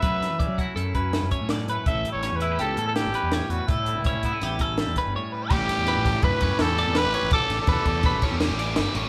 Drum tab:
CC |----------|----------|----------|x---------|
RD |----------|----------|----------|-xxxxxxxxx|
HH |xxxxxxxxxx|xxxxxxxxxx|xxxxxxxx--|----------|
SD |-o----o-o-|--o---o-o-|----o-oo--|-ooo--ooo-|
BD |o-oo-o-o--|o---------|o-oo-o-o--|o--ooo----|

CC |----------|
RD |xxxxxxxxxx|
HH |----------|
SD |-oo-o-ooo-|
BD |o-oooo----|